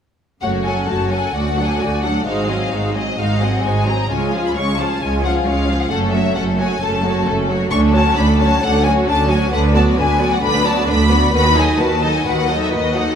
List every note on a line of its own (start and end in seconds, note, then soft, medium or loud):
0.41 0.84 F#1 soft
0.41 0.83 F#2 soft
0.41 0.64 A3 soft
0.41 0.64 F#4 soft
0.41 0.64 C#5 soft
0.41 0.49 F#5 medium
0.65 0.89 F#3 soft
0.65 0.89 C#4 soft
0.65 0.89 A4 soft
0.65 0.89 F#5 soft
0.65 0.88 G#5 soft
0.88 1.30 F#1 soft
0.88 1.30 F#2 soft
0.88 1.12 A3 soft
0.88 1.12 F#4 soft
0.88 1.13 C#5 soft
0.88 1.11 A5 soft
1.11 1.35 F#3 soft
1.11 1.35 C#4 soft
1.11 1.35 A4 soft
1.11 1.35 F#5 soft
1.11 1.34 G#5 soft
1.35 1.75 D2 soft
1.35 1.76 D2 soft
1.35 1.57 A3 soft
1.35 1.57 F#4 soft
1.35 1.57 D5 soft
1.35 1.69 F#5 medium
1.57 1.82 F#3 soft
1.57 1.81 D4 soft
1.57 1.81 A4 soft
1.57 1.81 F#5 soft
1.67 2.03 G#5 medium
1.80 2.21 D2 soft
1.80 2.22 D2 soft
1.80 2.04 A3 soft
1.80 2.03 F#4 soft
1.80 2.04 F#4 soft
1.80 2.03 D5 soft
2.03 2.27 F#3 soft
2.03 2.27 D4 soft
2.03 2.26 A4 soft
2.03 2.26 F#5 soft
2.25 2.67 G#1 soft
2.25 2.67 G#2 soft
2.25 2.48 G#3 soft
2.25 2.48 D#4 soft
2.25 2.48 F#4 soft
2.25 2.47 C5 soft
2.25 2.93 F5 medium
2.48 2.72 F#3 soft
2.48 2.72 C4 soft
2.48 2.72 G#4 soft
2.48 2.72 D#5 soft
2.71 3.13 G#1 soft
2.71 3.13 G#2 soft
2.71 2.95 G#3 soft
2.71 2.95 D#4 soft
2.71 2.95 F#4 soft
2.71 2.95 C5 soft
2.94 3.18 F#3 soft
2.94 3.18 C4 soft
2.94 3.19 G#4 soft
2.94 3.19 D#5 soft
2.94 3.19 D#5 medium
3.18 3.59 G#1 soft
3.18 3.59 G#2 soft
3.18 3.40 G#3 soft
3.18 3.40 D#4 soft
3.18 3.40 F#4 soft
3.18 3.40 C5 soft
3.18 3.42 F5 medium
3.41 3.65 F#3 soft
3.41 3.65 C4 soft
3.41 3.64 G#4 soft
3.41 3.64 D#5 soft
3.41 3.66 F#5 medium
3.64 4.05 G#1 soft
3.64 4.05 G#2 soft
3.64 3.88 G#3 soft
3.64 3.88 D#4 soft
3.64 3.88 F#4 soft
3.64 3.87 C5 soft
3.64 3.88 G#5 medium
3.87 4.10 F#3 soft
3.87 4.11 C4 soft
3.87 4.10 G#4 soft
3.87 4.11 D#5 soft
3.87 4.10 A#5 medium
4.10 4.51 C#2 soft
4.10 4.32 G#3 soft
4.10 4.32 C#4 soft
4.10 4.32 F4 soft
4.10 4.32 C#5 soft
4.10 4.45 G#5 medium
4.32 4.56 F3 soft
4.32 4.56 F4 soft
4.32 4.56 G#4 soft
4.32 4.56 F5 soft
4.46 4.51 B5 soft
4.56 4.96 C#2 soft
4.56 4.79 G#3 soft
4.56 4.79 C#4 soft
4.56 4.79 F4 soft
4.56 4.79 C#5 soft
4.56 4.79 C#6 medium
4.79 5.02 F3 soft
4.79 5.02 F4 soft
4.79 5.02 G#4 soft
4.79 5.02 F5 soft
4.79 5.02 A5 medium
5.01 5.41 C#2 soft
5.01 5.42 C#2 soft
5.01 5.23 G#3 soft
5.01 5.23 C#4 soft
5.01 5.23 F4 soft
5.01 5.23 C#5 soft
5.01 5.25 G#5 medium
5.24 5.47 F3 soft
5.24 5.47 F4 soft
5.24 5.47 G#4 soft
5.24 5.47 F5 soft
5.24 5.33 F#5 medium
5.46 5.86 C#2 medium
5.46 5.87 C#2 soft
5.46 5.70 G#3 soft
5.46 5.70 C#4 soft
5.46 5.69 F4 soft
5.46 5.69 C#5 soft
5.46 5.80 F5 medium
5.69 5.92 F3 soft
5.69 5.92 F4 soft
5.69 5.92 G#4 soft
5.69 5.92 F5 soft
5.81 5.89 F#5 medium
5.90 6.32 F#1 soft
5.90 6.33 F#2 medium
5.90 6.12 A3 soft
5.90 6.13 C#4 soft
5.90 6.13 A4 soft
5.90 5.98 F#5 medium
6.12 6.37 F#3 soft
6.12 6.36 A3 soft
6.12 6.36 F#4 soft
6.12 6.36 C#5 soft
6.12 6.35 E5 medium
6.35 6.77 F#1 soft
6.35 6.78 F#2 soft
6.35 6.58 A3 soft
6.35 6.60 C#4 soft
6.35 6.59 A4 soft
6.35 6.43 F#5 medium
6.58 6.82 F#3 soft
6.58 6.80 A3 soft
6.58 6.82 F#4 soft
6.58 6.82 C#5 soft
6.58 6.81 G#5 medium
6.81 7.22 F#1 medium
6.81 7.22 F#2 soft
6.81 7.03 A3 soft
6.81 7.03 C#4 soft
6.81 7.03 A4 soft
6.81 7.27 A5 medium
7.03 7.27 F#3 soft
7.03 7.25 A3 soft
7.03 7.27 F#4 soft
7.03 7.27 C#5 soft
7.26 7.67 F#1 medium
7.26 7.68 F#2 medium
7.26 7.48 A3 soft
7.26 7.49 C#4 soft
7.26 7.50 A4 soft
7.49 7.72 F#3 soft
7.49 7.71 A3 soft
7.49 7.72 F#4 soft
7.49 7.72 C#5 soft
7.70 8.12 D2 medium
7.70 7.93 A3 soft
7.70 7.92 C#4 soft
7.70 7.93 D4 soft
7.70 7.92 A4 soft
7.70 7.79 C#6 medium
7.94 8.17 F#3 soft
7.94 8.17 C#4 soft
7.94 8.17 F#4 soft
7.94 8.17 C#5 soft
7.94 8.16 A5 medium
8.17 8.57 D2 medium
8.17 8.57 D2 soft
8.17 8.40 A3 soft
8.17 8.40 C#4 soft
8.17 8.40 D4 soft
8.17 8.40 A4 soft
8.17 8.40 B5 medium
8.39 8.63 F#3 soft
8.39 8.63 C#4 soft
8.39 8.63 F#4 soft
8.39 8.63 C#5 soft
8.39 8.61 A5 medium
8.61 9.02 D2 medium
8.61 9.03 D2 medium
8.61 8.84 A3 medium
8.61 8.83 C#4 soft
8.61 8.84 D4 soft
8.61 8.83 A4 soft
8.61 8.85 F#5 medium
8.84 9.08 F#3 soft
8.84 9.08 C#4 soft
8.84 9.07 F#4 soft
8.84 9.07 C#5 soft
8.84 8.92 G#5 medium
9.07 9.47 D2 medium
9.07 9.30 A3 soft
9.07 9.30 C#4 soft
9.07 9.30 D4 medium
9.07 9.30 A4 soft
9.07 9.30 A5 medium
9.29 9.53 F#3 soft
9.29 9.53 C#4 soft
9.29 9.52 F#4 soft
9.29 9.53 C#5 soft
9.29 9.52 G#5 medium
9.52 9.92 D2 medium
9.52 9.93 D2 medium
9.52 9.74 D3 medium
9.52 9.73 D4 medium
9.52 9.73 D4 soft
9.52 9.73 B4 medium
9.52 9.61 F#5 medium
9.73 9.98 F#3 soft
9.73 9.98 B3 soft
9.73 9.97 F#4 soft
9.73 9.97 D5 soft
9.73 9.84 A5 medium
9.97 10.38 D2 medium
9.97 10.21 D3 soft
9.97 10.20 D4 soft
9.97 10.20 B4 medium
9.97 10.31 G#5 medium
10.19 10.43 F#3 soft
10.19 10.43 B3 soft
10.19 10.43 F#4 medium
10.19 10.43 D5 medium
10.32 10.43 F#5 medium
10.42 10.83 D2 medium
10.42 10.84 D2 medium
10.42 10.64 D3 soft
10.42 10.64 D4 soft
10.42 10.64 D4 medium
10.42 10.64 B4 soft
10.42 10.66 B5 medium
10.64 10.89 F#3 soft
10.64 10.88 B3 soft
10.64 10.88 F#4 medium
10.64 10.88 D5 medium
10.64 10.89 A5 medium
10.87 11.29 D2 medium
10.87 11.11 D3 soft
10.87 11.11 D4 medium
10.87 11.11 B4 soft
10.87 11.34 B5 medium
11.10 11.34 F#3 soft
11.10 11.34 B3 soft
11.10 11.34 F#4 soft
11.10 11.34 D5 soft
11.33 11.74 D#2 medium
11.33 11.55 D#3 medium
11.33 11.55 F#4 medium
11.33 11.55 B4 medium
11.33 11.57 B5 medium
11.56 11.79 F#3 soft
11.56 11.79 D#4 soft
11.56 11.79 A4 soft
11.56 11.79 D#5 soft
11.56 11.80 G#5 medium
11.79 12.20 D#2 soft
11.79 12.21 D#2 medium
11.79 12.02 D#3 soft
11.79 12.02 F#4 soft
11.79 12.02 B4 soft
11.79 12.15 A5 medium
12.02 12.25 F#3 soft
12.02 12.25 D#4 soft
12.02 12.25 A4 soft
12.02 12.25 D#5 soft
12.16 12.26 G#5 medium
12.25 12.67 D#2 medium
12.25 12.47 D#3 soft
12.25 12.47 F#4 soft
12.25 12.47 B4 soft
12.25 12.60 F#5 medium
12.48 12.73 F#3 soft
12.48 12.73 D#4 soft
12.48 12.72 A4 soft
12.48 12.72 D#5 soft
12.62 12.73 E5 medium
12.71 13.15 D#2 medium
12.71 13.15 D#2 soft
12.71 12.96 D#3 soft
12.71 12.97 F#4 soft
12.71 12.96 B4 soft
12.71 12.96 D#5 medium
12.94 13.15 F#3 soft
12.94 13.15 D#4 soft
12.94 13.15 A4 soft
12.94 13.15 D#5 soft
12.94 13.15 F#5 medium